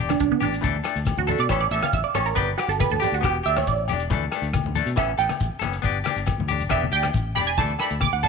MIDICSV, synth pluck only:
0, 0, Header, 1, 2, 480
1, 0, Start_track
1, 0, Key_signature, 2, "major"
1, 0, Tempo, 434468
1, 697, Time_signature, 4, 2, 24, 8
1, 9151, End_track
2, 0, Start_track
2, 0, Title_t, "Synth pluck"
2, 0, Program_c, 0, 84
2, 114, Note_on_c, 0, 62, 70
2, 212, Note_off_c, 0, 62, 0
2, 225, Note_on_c, 0, 62, 78
2, 337, Note_off_c, 0, 62, 0
2, 349, Note_on_c, 0, 59, 76
2, 457, Note_off_c, 0, 59, 0
2, 473, Note_on_c, 0, 62, 76
2, 693, Note_off_c, 0, 62, 0
2, 1309, Note_on_c, 0, 66, 81
2, 1419, Note_off_c, 0, 66, 0
2, 1419, Note_on_c, 0, 69, 86
2, 1536, Note_off_c, 0, 69, 0
2, 1545, Note_on_c, 0, 74, 103
2, 1657, Note_off_c, 0, 74, 0
2, 1661, Note_on_c, 0, 73, 82
2, 1773, Note_on_c, 0, 74, 87
2, 1777, Note_off_c, 0, 73, 0
2, 1891, Note_off_c, 0, 74, 0
2, 1895, Note_on_c, 0, 76, 102
2, 2014, Note_off_c, 0, 76, 0
2, 2022, Note_on_c, 0, 77, 102
2, 2136, Note_off_c, 0, 77, 0
2, 2139, Note_on_c, 0, 76, 88
2, 2252, Note_on_c, 0, 74, 79
2, 2256, Note_off_c, 0, 76, 0
2, 2371, Note_off_c, 0, 74, 0
2, 2376, Note_on_c, 0, 73, 90
2, 2495, Note_off_c, 0, 73, 0
2, 2495, Note_on_c, 0, 70, 80
2, 2606, Note_on_c, 0, 71, 92
2, 2613, Note_off_c, 0, 70, 0
2, 2730, Note_off_c, 0, 71, 0
2, 2846, Note_on_c, 0, 66, 67
2, 2970, Note_off_c, 0, 66, 0
2, 2973, Note_on_c, 0, 69, 83
2, 3092, Note_off_c, 0, 69, 0
2, 3096, Note_on_c, 0, 71, 99
2, 3215, Note_off_c, 0, 71, 0
2, 3220, Note_on_c, 0, 69, 87
2, 3334, Note_on_c, 0, 67, 84
2, 3335, Note_off_c, 0, 69, 0
2, 3454, Note_off_c, 0, 67, 0
2, 3471, Note_on_c, 0, 66, 80
2, 3581, Note_off_c, 0, 66, 0
2, 3586, Note_on_c, 0, 67, 74
2, 3816, Note_off_c, 0, 67, 0
2, 3820, Note_on_c, 0, 76, 109
2, 3937, Note_off_c, 0, 76, 0
2, 3951, Note_on_c, 0, 73, 78
2, 4061, Note_off_c, 0, 73, 0
2, 4066, Note_on_c, 0, 74, 78
2, 4979, Note_off_c, 0, 74, 0
2, 5496, Note_on_c, 0, 76, 83
2, 5730, Note_on_c, 0, 79, 107
2, 5731, Note_off_c, 0, 76, 0
2, 5967, Note_off_c, 0, 79, 0
2, 7414, Note_on_c, 0, 76, 72
2, 7649, Note_off_c, 0, 76, 0
2, 7652, Note_on_c, 0, 79, 107
2, 7798, Note_off_c, 0, 79, 0
2, 8127, Note_on_c, 0, 83, 96
2, 8251, Note_off_c, 0, 83, 0
2, 8252, Note_on_c, 0, 80, 84
2, 8371, Note_off_c, 0, 80, 0
2, 8371, Note_on_c, 0, 81, 93
2, 8493, Note_off_c, 0, 81, 0
2, 8620, Note_on_c, 0, 83, 102
2, 8737, Note_off_c, 0, 83, 0
2, 8854, Note_on_c, 0, 86, 114
2, 8974, Note_off_c, 0, 86, 0
2, 8980, Note_on_c, 0, 78, 74
2, 9095, Note_off_c, 0, 78, 0
2, 9098, Note_on_c, 0, 81, 102
2, 9151, Note_off_c, 0, 81, 0
2, 9151, End_track
0, 0, End_of_file